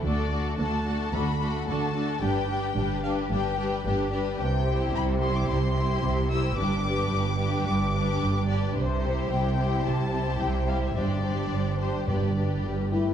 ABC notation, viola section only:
X:1
M:4/4
L:1/8
Q:1/4=110
K:C
V:1 name="Viola section"
[A,D] [A,D] [A,D] [A,D] [A,D] [A,D] [A,D] [A,D] | [G,D] [G,D] [G,D] [G,D] [G,D] [G,D] [G,D] [G,D] | z [G,E]2 [G,E]2 [G,E]2 [G,E] | [G,D] [G,D]2 [G,D]2 [G,D]2 [G,D] |
z [G,E]2 [G,E]2 [G,E]2 [G,E] | [G,D] [G,D]2 [G,D] [G,D] [G,D] G, A, |]